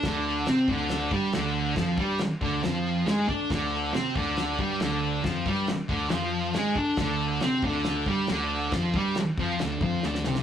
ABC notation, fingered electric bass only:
X:1
M:4/4
L:1/8
Q:1/4=138
K:Dm
V:1 name="Fingered electric bass" clef=bass
D,,2 C, D,,2 G,, D,,2 | F,, G,, z D,, F,,2 ^G,, D, | D,,2 C, D,,2 G,, D,,2 | F,, G,, z D,, F,,2 ^G,, D, |
D,,2 C, D,,2 G,, D,,2 | F,, G,, z F,, D,, F,, D,, C,, |]